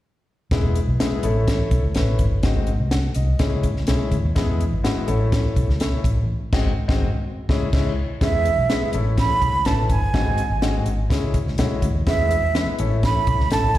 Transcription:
0.51 fingered electric bass E1, grand piano G#3 B3 E4 G#4, kick, snare, closed hi-hat
0.75 closed hi-hat
0.87 fingered electric bass B1
1.00 grand piano G#3 B3 E4 G#4, snare, closed hi-hat
1.12 muted fingered electric bass stroke
1.23 fingered electric bass A1, grand piano A3 C#4 E4 A4, closed hi-hat
1.47 kick, snare, closed hi-hat
1.71 fingered electric bass B1, kick, closed hi-hat
1.83 fingered electric bass C#2
1.95 fingered electric bass A1, grand piano A3 C#4 E4 B4, snare, closed hi-hat
2.19 fingered electric bass G1, kick, closed hi-hat
2.43 fingered electric bass G#1, grand piano G#3 C4 D#4 F#4, kick, snare, closed hi-hat
2.67 closed hi-hat
2.80 fingered electric bass C2
2.91 grand piano F#5, snare, closed hi-hat
3.14 fingered electric bass C2, grand piano D#5, closed hi-hat
3.39 fingered electric bass C#2, grand piano G#3 C#4 E4 G#4, kick, snare, closed hi-hat
3.63 kick, closed hi-hat
3.75 fingered electric bass C#2, snare
3.87 fingered electric bass B1, grand piano G#3 C#4 E4 G#4, snare, closed hi-hat
4.12 fingered electric bass D2, kick, closed hi-hat
4.24 fingered electric bass D#2
4.35 fingered electric bass E2, grand piano G#3 B3 E4 G#4, kick, snare, closed hi-hat
4.61 closed hi-hat
4.72 fingered electric bass G#1
4.84 grand piano G#3 B3 E4 F#4, snare, closed hi-hat
4.96 muted fingered electric bass stroke
5.07 fingered electric bass A1, grand piano A3 C#4 E4 A4, closed hi-hat
5.32 kick, snare, closed hi-hat
5.56 fingered electric bass B1, kick, closed hi-hat
5.69 fingered electric bass C#2, snare
5.80 grand piano A3 C#4 E4 A4, snare, closed hi-hat
5.93 muted fingered electric bass stroke
6.04 fingered electric bass A1, kick, closed hi-hat
6.53 fingered electric bass G#1, grand piano G#3 C4 D#4 F#4, kick, snare, crash
6.88 fingered electric bass G#1, grand piano G#3 C4 D#4 F#4, kick, snare
7.49 fingered electric bass C#2, grand piano G#3 C#4 E4 G#4, kick, snare
7.73 fingered electric bass C#2, grand piano G#3 C#4 E4 G#4, kick, snare, crash
8.21 fingered electric bass E2, grand piano G#3 B3 E4 G#4, flute E5, kick, snare, closed hi-hat
8.45 closed hi-hat
8.58 fingered electric bass B1
8.70 grand piano G#3 B3 E4 G#4, snare, closed hi-hat
8.81 muted fingered electric bass stroke
8.93 fingered electric bass A1, grand piano A3 C#4 E4 A4, closed hi-hat
9.18 flute B5, kick, snare, closed hi-hat
9.42 fingered electric bass B1, kick, closed hi-hat
9.54 fingered electric bass C#2
9.65 fingered electric bass A1, grand piano A3 C#4 E4 B4, flute A5, snare, closed hi-hat
9.89 fingered electric bass G1, flute G#5, kick, closed hi-hat
10.14 fingered electric bass G#1, grand piano G#3 C4 D#4 F#4, kick, snare, closed hi-hat
10.38 closed hi-hat
10.50 fingered electric bass G#1
10.62 grand piano G#3 C4 D#4 F#4, snare, closed hi-hat
10.86 fingered electric bass G#1, closed hi-hat
11.10 fingered electric bass C#2, grand piano G#3 C#4 E4 G#4, kick, snare, closed hi-hat
11.34 kick, closed hi-hat
11.46 fingered electric bass C#2, snare
11.58 fingered electric bass B1, grand piano G#3 C#4 E4 F#4, snare, closed hi-hat
11.82 fingered electric bass D2, kick, closed hi-hat
11.95 fingered electric bass D#2
12.07 fingered electric bass E2, grand piano G#3 B3 E4 G#4, flute E5, kick, snare, closed hi-hat
12.31 closed hi-hat
12.42 fingered electric bass E2
12.55 grand piano G#3 B3 E4 B4, snare, closed hi-hat
12.67 muted fingered electric bass stroke
12.79 fingered electric bass A1, grand piano A3 C#4 E4 A4, closed hi-hat
13.03 flute B5, kick, snare, closed hi-hat
13.27 fingered electric bass B1, kick, closed hi-hat
13.40 fingered electric bass C#2, snare
13.51 fingered electric bass A1, grand piano A3 C#4 E4 A4, flute A5, snare, closed hi-hat
13.75 kick, closed hi-hat

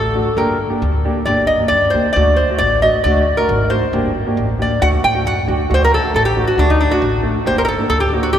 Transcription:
Already playing: upright bass A1, resonator guitar played with a steel bar A4
0.15 upright piano A3 D4 F#4
0.37 upright bass G1, upright piano A#3 D4 G4, resonator guitar played with a steel bar A#4
0.70 upright piano A#3 D4 G4
0.82 upright bass D2
1.05 upright piano A#3 D4 G4
1.25 upright bass G1, upright piano A#3 D4 G4, resonator guitar played with a steel bar D5
1.47 resonator guitar played with a steel bar D#5
1.60 upright piano A#3 D4 G4
1.68 upright bass F#2, resonator guitar played with a steel bar D5
1.90 upright bass D2, upright piano A#3 D4 G4, resonator guitar played with a steel bar C5
2.13 upright bass D2, upright piano A3 D4 F#4, resonator guitar played with a steel bar D5
2.36 resonator guitar played with a steel bar C5
2.50 upright piano A3 D4 F#4
2.58 upright bass A1, resonator guitar played with a steel bar D5
2.82 upright piano A3 D4 F#4, resonator guitar played with a steel bar D#5
3.04 upright bass D2, upright piano A3 D4 F#4, resonator guitar played with a steel bar D5
3.37 upright piano A3 D4 F#4, resonator guitar played with a steel bar A#4
3.49 upright bass G#1
3.69 upright piano A3 D4 F#4, resonator guitar played with a steel bar C5
3.93 upright bass G1, upright piano A#3 D4 G4
4.26 upright piano A#3 D4 G4
4.37 upright bass A1
4.59 upright piano A#3 D4 G4, resonator guitar played with a steel bar D5
4.82 upright bass D2, upright piano A3 D4 F#4, resonator guitar played with a steel bar F#5
5.04 upright bass A2, resonator guitar played with a steel bar G5
5.14 upright piano A3 D4 F#4
5.26 upright bass F#2, resonator guitar played with a steel bar F#5
5.47 upright bass D2, upright piano A3 D4 F#4
5.70 upright bass D2, upright piano A3 D4 F#4
5.74 resonator guitar played with a steel bar C5
5.84 resonator guitar played with a steel bar A#4
5.94 resonator guitar played with a steel bar A4
6.02 upright piano A3 D4 F#4
6.14 upright bass A1, resonator guitar played with a steel bar A4
6.25 resonator guitar played with a steel bar G4
6.36 upright piano A3 D4 F#4
6.47 resonator guitar played with a steel bar F#4
6.57 upright bass D2, upright piano A3 D4 F#4, resonator guitar played with a steel bar D4
6.70 resonator guitar played with a steel bar D#4
6.81 resonator guitar played with a steel bar D4
6.91 upright piano A3 D4 F#4, resonator guitar played with a steel bar F#4
7.02 upright bass A1
7.23 upright piano A3 D4 A4
7.46 upright bass G1, upright piano A#3 D4 G4, resonator guitar played with a steel bar C5
7.58 resonator guitar played with a steel bar A#4 C5
7.65 resonator guitar played with a steel bar A4 A#4
7.79 upright piano A#3 D4 A4
7.90 upright bass D2, resonator guitar played with a steel bar A4
8.00 resonator guitar played with a steel bar G4
8.12 upright piano A#3 D4 F#4
8.23 resonator guitar played with a steel bar F#4
8.33 upright bass G1, upright piano A#3 D4 G4, resonator guitar played with a steel bar G4

